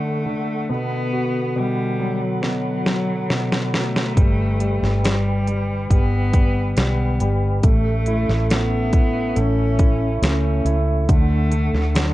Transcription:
Already playing: grand piano D3, tonewheel organ D3 A4 F#5 C#6, cello A3
0.26 grand piano D3
0.69 grand piano B2, cello B3, tonewheel organ B5
1.13 grand piano F#4
1.56 grand piano B2, cello G3
1.99 grand piano F#3
2.22 cello F#3
2.42 grand piano B2, snare
2.86 grand piano F#3, snare
3.30 grand piano B2, snare
3.52 snare
3.74 grand piano F#3, cello A3, snare
3.96 snare
4.17 fingered electric bass G1, grand piano G3, tonewheel organ B4 G5, kick, closed hi-hat
4.60 grand piano G3, closed hi-hat
4.82 fingered electric bass G1, snare
5.04 grand piano G3, cello G3, snare, closed hi-hat
5.47 grand piano G3, closed hi-hat
5.90 fingered electric bass G1, grand piano G3, cello B3, kick, closed hi-hat
6.33 grand piano G3, kick, closed hi-hat
6.77 fingered electric bass B1, grand piano G3, cello B3, snare, closed hi-hat
7.20 fingered electric bass G1, grand piano G3, closed hi-hat
7.62 fingered electric bass A1, grand piano A3, cello A3, tonewheel organ C#4 A4 E5 C#6, kick, closed hi-hat
8.06 grand piano E4, closed hi-hat
8.29 fingered electric bass A1, snare
8.50 grand piano A3, cello B3, snare, closed hi-hat
8.93 grand piano E4, kick, closed hi-hat
9.36 fingered electric bass A1, grand piano A3, cello C#4, closed hi-hat
9.79 grand piano E4, kick, closed hi-hat
10.22 fingered electric bass C#2, grand piano A3, cello C#4, snare, closed hi-hat
10.65 fingered electric bass C#2, grand piano E4, closed hi-hat
11.09 fingered electric bass D2, grand piano D3, cello A3, tonewheel organ D4 F#5 C#6, kick, closed hi-hat
11.52 grand piano D3, closed hi-hat
11.73 fingered electric bass D2, snare
11.95 grand piano D3, cello F#3, snare, closed hi-hat

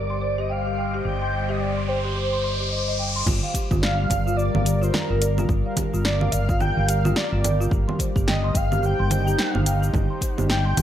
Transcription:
Already playing: fretless electric bass G1, analog synth pad G3 G4 C5 F5, soft synth lead D5, synth texture D6, riser
0.10 marimba C6
0.21 marimba C5
0.36 marimba G4, analog synth pad D#5, soft synth lead D#5
0.50 soft synth lead F5, marimba G5
0.67 marimba G4
0.78 marimba G5
0.94 marimba G4
1.05 fretless electric bass G1, marimba G4, soft synth lead G5
1.22 marimba C6
1.33 marimba C5
1.49 marimba G4, soft synth lead D#5
1.60 soft synth lead D5, marimba G5
1.77 marimba C6
1.88 soft synth lead C5, marimba G5
2.05 marimba G4
2.16 marimba G4
2.33 marimba C6
2.44 marimba C6
2.60 marimba G4
2.71 marimba D#5
2.88 marimba D#5
2.99 marimba G5
3.16 marimba C6
3.26 fretless electric bass G1, marimba F4, kick, crash, low conga, shaker
3.43 marimba F5
3.53 analog synth pad G4, marimba G4, kick, closed hi-hat, shaker
3.71 fretless electric bass G1, marimba F4, kick, low conga, shaker
3.82 marimba D5, soft synth lead F5, snare, shaker
3.92 analog synth pad A#4
3.99 marimba F5
4.10 fretless electric bass G1, marimba D5, kick, closed hi-hat, low conga, shaker
4.27 marimba F4, shaker
4.36 marimba F4, soft synth lead D5, shaker
4.54 fretless electric bass G1, marimba F5, low conga
4.65 marimba G4, closed hi-hat, shaker
4.75 soft synth lead D5, analog synth pad F5
4.82 marimba F4, soft synth lead C5, shaker
4.93 soft synth lead A#4, marimba D5, snare, low conga, shaker
5.10 fretless electric bass G1, marimba F4
5.21 marimba D5, closed hi-hat, shaker
5.38 marimba F4, low conga, shaker
5.49 fretless electric bass G1, marimba F4, kick, shaker
5.66 marimba F5
5.77 marimba G4, kick, closed hi-hat, low conga, shaker
5.94 fretless electric bass G1, marimba F4, shaker
6.05 marimba D5, soft synth lead D5, snare, shaker
6.21 marimba F5, low conga
6.32 fretless electric bass G1, marimba D5, soft synth lead F5, closed hi-hat, shaker
6.49 marimba F4, kick, shaker
6.60 marimba F4, soft synth lead G5, low conga, shaker
6.77 fretless electric bass G1, marimba F5
6.88 marimba G4, soft synth lead F5, closed hi-hat, shaker
7.05 marimba F4, low conga, shaker
7.16 marimba D5, soft synth lead D5, snare, shaker
7.32 fretless electric bass G1, marimba F4
7.44 marimba D5, closed hi-hat, low conga, shaker
7.60 marimba F4, shaker
7.71 fretless electric bass G1, marimba G4, kick, shaker
7.88 marimba C6, low conga
7.99 marimba C5, kick, closed hi-hat, shaker
8.16 fretless electric bass G1, marimba G4, kick, shaker
8.27 analog synth pad C5, soft synth lead D#5, marimba G5, snare, low conga, shaker
8.44 marimba C6
8.55 fretless electric bass G1, soft synth lead F5, marimba G5, kick, closed hi-hat, shaker
8.71 analog synth pad D#4, marimba G4, low conga, shaker
8.83 marimba G4, soft synth lead G5, shaker
8.99 fretless electric bass G1, marimba C6
9.10 marimba C5, closed hi-hat, low conga, shaker
9.27 marimba G4, shaker
9.38 soft synth lead F5, marimba G5, snare, shaker
9.55 fretless electric bass G1, marimba G4, low conga
9.66 marimba G5, closed hi-hat, shaker
9.82 marimba G4, shaker
9.94 fretless electric bass G1, marimba G4, kick, low conga, shaker
10.10 marimba C6
10.21 marimba C5, kick, closed hi-hat, shaker
10.38 fretless electric bass G1, marimba G4, low conga, shaker
10.49 marimba G5, soft synth lead G5, snare, shaker
10.65 marimba C6
10.77 fretless electric bass G1, marimba G5, closed hi-hat, low conga, shaker

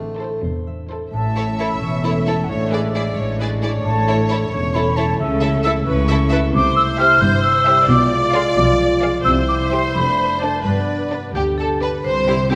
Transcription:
Already playing: double bass section A1, cello section A2, harp A2 C4, bassoon A3
0.19 viola section E4, violin section A4 C5, harp A4
0.42 double bass section E1, cello section E2, harp C5
0.67 harp E5
0.89 viola section E4, harp A4, violin section A4 C5
1.12 double bass section A1, cello section A2, harp A2, french horn section A3 C#4, viola section E5, flute A5
1.36 violin section E4 A4 C#5, harp A4
1.59 harp E4, violin section E4 A4 C#5, flute B5
1.81 double bass section E1, cello section E2, harp E3, flute C#6
2.03 violin section E4 A4 C#5, harp A4, flute B5
2.26 harp E4, violin section E4 A4 C#5, flute A5
2.44 flute F#5
2.49 double bass section A1, harp A2, cello section A2, french horn section G#3 D4, viola section C#5, flute E5
2.72 violin section E4 G#4 D5, harp G#4, viola section B4
2.94 violin section E4 G#4 D5, harp E4, viola section D5
3.16 double bass section A1, cello section A2, harp E3, viola section C#5
3.39 violin section E4 G#4 D5, harp G#4, viola section B4
3.62 violin section E4 G#4 D5, harp E4, viola section C#5
3.84 double bass section A1, cello section A2, harp A2, french horn section A3, flute A5
4.07 violin section E4 A4 C#5, harp A4
4.28 harp E4, violin section E4 A4 C#5, flute B5
4.52 double bass section E1, cello section E2, harp E3, french horn section C#4, flute C#6
4.74 violin section E4 A4 C#5, harp A4, flute B5
4.96 harp E4, violin section E4 A4 C#5, flute A5
5.19 double bass section C#2, cello section C#3, harp C#3, french horn section E4, viola section A4, flute E5
5.41 violin section E4 A4 E5, harp A4
5.63 harp E4, violin section E4 A4 E5, flute E6
5.86 double bass section C#2, cello section C#3, harp C#4, viola section B4, flute C#6
6.09 violin section E4 A4 E5, viola section A4, harp A4
6.29 harp E4, violin section E4 A4 E5, viola section B4
6.53 double bass section C2, cello section C3, harp C3, viola section C5, flute D6
6.76 harp C5, flute E6
6.99 harp E4, violin section G4 C5 E5, flute F6
7.21 double bass section G1, cello section G2, french horn section G3, harp C4, flute G6
7.43 harp C5, flute E6
7.67 harp E4, violin section G4 C5 E5
7.88 double bass section B1, cello section B2, harp B2, french horn section G#3 F4, viola section D5, flute D6
8.12 harp D5
8.34 harp F4, violin section G#4 D5 F5, flute C6
8.56 double bass section B1, cello section B2, harp F3, flute D6
8.79 harp D5
9.02 harp F4, violin section G#4 D5 F5
9.24 double bass section C2, harp C3, cello section C3, french horn section G3 E4, viola section C5, flute E6
9.48 harp G3, flute D6
9.71 harp E4 C5, violin section G4 C5 E5, flute C6
9.94 double bass section F1, cello section F2, harp F2, french horn section A3 D4, flute B5
10.18 harp A3
10.41 harp D4 D5, violin section D4 A4 D5, flute A5
10.64 double bass section G1, cello section G2, harp G2, french horn section B3 D4, viola section B4, flute D5
10.89 harp D5
11.12 violin section D4 B4 D5, harp D4
11.35 double bass section D2, cello section D2, harp D3, viola section G4, marimba G4, violin section G4, flute G5
11.58 marimba A4, viola section A4, violin section A4, harp D5, flute A5
11.81 violin section D4 B4 D5, harp D4, viola section B4, marimba B4, flute B5
12.04 double bass section C2, cello section C2, harp C3, marimba C5, violin section C5, flute C6
12.27 french horn section G3 E4, harp G3, viola section G3 C4, violin section E4 G4
12.50 viola section G3 C4, french horn section G3 E4, harp E4, violin section E4 G4, marimba G4, flute G5

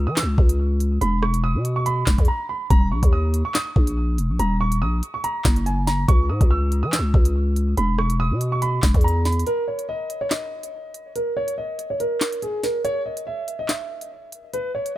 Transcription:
0.07 808-style bass E3, grand piano D#6
0.16 grand piano E6, snare, clap, closed hi-hat
0.23 808-style bass C#2
0.38 808-style bass C#2, kick
0.49 closed hi-hat
0.80 closed hi-hat
1.01 808-style bass E1, grand piano B5, closed hi-hat
1.22 grand piano C#6, cross-stick
1.34 closed hi-hat
1.44 grand piano D#6
1.55 808-style bass B2
1.65 closed hi-hat
1.76 grand piano C#6
1.86 grand piano B5, closed hi-hat
2.07 808-style bass E1, kick, snare, clap
2.18 808-style bass E2, kick, closed hi-hat
2.25 grand piano A#5, closed hi-hat
2.49 grand piano B5
2.70 808-style bass D#1, grand piano A#5, kick, closed hi-hat
2.92 808-style bass A#1, grand piano C#6
3.03 808-style bass D#2, kick, closed hi-hat
3.13 grand piano D#6
3.34 closed hi-hat
3.45 grand piano C#6
3.54 grand piano D#6, snare, clap, closed hi-hat
3.76 808-style bass A#1, kick
3.87 closed hi-hat
4.18 808-style bass E1, closed hi-hat
4.29 808-style bass A#1
4.39 808-style bass D#1, grand piano A#5, closed hi-hat
4.61 grand piano C#6
4.72 closed hi-hat
4.82 808-style bass A#1, grand piano D#6
5.03 closed hi-hat
5.14 grand piano C#6
5.24 grand piano A#5, closed hi-hat
5.44 808-style bass F#1, kick, snare, clap
5.56 closed hi-hat
5.66 grand piano G#5, closed hi-hat
5.87 grand piano A#5, snare, closed hi-hat
6.08 808-style bass C#2, grand piano C#6, kick, closed hi-hat
6.29 808-style bass G#2, grand piano D#6
6.41 808-style bass C#2, kick, closed hi-hat
6.51 grand piano E6
6.72 closed hi-hat
6.83 808-style bass E3, grand piano D#6
6.92 grand piano E6, snare, clap, closed hi-hat
6.99 808-style bass C#2
7.14 808-style bass C#2, kick
7.25 closed hi-hat
7.56 closed hi-hat
7.77 808-style bass E1, grand piano B5, closed hi-hat
7.98 grand piano C#6, cross-stick
8.10 closed hi-hat
8.20 grand piano D#6
8.31 808-style bass B2
8.41 closed hi-hat
8.52 grand piano C#6
8.62 grand piano B5, closed hi-hat
8.83 808-style bass E1, kick, snare, clap
8.94 808-style bass E2, kick, closed hi-hat
9.01 grand piano A#5, closed hi-hat
9.08 closed hi-hat
9.25 grand piano B5, snare, closed hi-hat
9.32 closed hi-hat
9.39 closed hi-hat
9.47 grand piano A#4, closed hi-hat
9.68 grand piano C#5
9.79 closed hi-hat
9.89 grand piano D#5
10.10 closed hi-hat
10.21 grand piano C#5
10.30 grand piano D#5, snare, clap, closed hi-hat
10.63 closed hi-hat
10.94 closed hi-hat
11.16 grand piano A#4, closed hi-hat
11.37 grand piano C#5
11.48 closed hi-hat
11.58 grand piano D#5
11.79 closed hi-hat
11.90 grand piano C#5
12.00 grand piano A#4, closed hi-hat
12.21 snare, clap
12.32 closed hi-hat
12.42 grand piano G#4, closed hi-hat
12.63 grand piano A#4, snare, closed hi-hat
12.85 grand piano C#5, closed hi-hat
13.06 grand piano D#5
13.17 closed hi-hat
13.27 grand piano E5
13.48 closed hi-hat
13.59 grand piano D#5
13.68 grand piano E5, snare, clap, closed hi-hat
14.01 closed hi-hat
14.32 closed hi-hat
14.53 grand piano B4, closed hi-hat
14.75 grand piano C#5
14.86 closed hi-hat

